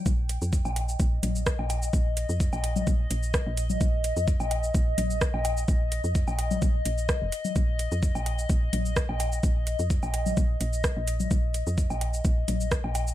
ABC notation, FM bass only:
X:1
M:4/4
L:1/16
Q:"Swing 16ths" 1/4=128
K:Cphr
V:1 name="FM bass" clef=bass
B,,,3 F,,2 B,,,3 B,,,2 B,,,3 B,,,3 | B,,,3 F,,2 B,,,3 B,,,2 B,,,3 B,,,3 | B,,,3 F,,2 B,,,3 B,,,2 B,,,3 B,,,3 | B,,,3 F,,2 B,,,3 B,,,2 B,,,3 F,,, z2 |
B,,,3 F,,2 B,,,3 B,,,2 B,,,3 B,,,3 | B,,,3 F,,2 B,,,3 B,,,2 B,,,3 B,,,3 | B,,,3 F,,2 B,,,3 B,,,2 B,,,3 B,,,3 |]